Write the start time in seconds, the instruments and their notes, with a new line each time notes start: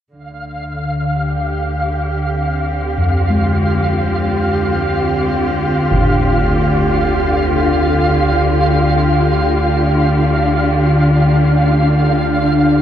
0.09 synth drone D2 D3, cello section D3, synth texture F5
1.15 cello section G4
2.26 cello section C4
2.98 kettle gongs F2
3.17 cello section F4
3.30 kettle gongs G#3
5.91 concert bass drum
8.70 cello section D4